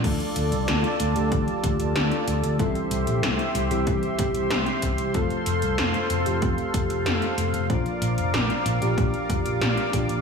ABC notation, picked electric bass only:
X:1
M:4/4
L:1/16
Q:1/4=94
K:Dm
V:1 name="Picked electric bass" clef=bass
D,, z D,, C,, D,, z D,, D,, D,, z D,, D,, D,, z D,, D,, | C,, z C,, B,,, C,, z C,, C,, C,, z C,, C,, C,, z C,, C,, | F,,, z F,,, C,, F,,, z F,,, F,,, F,,, z F,,, F,,, F,,, z F,,, F,,, | B,,, z B,,, F,,, B,,, z B,,, B,,, B,,, z F,,, B,,, B,,, z B,,, B,,, |]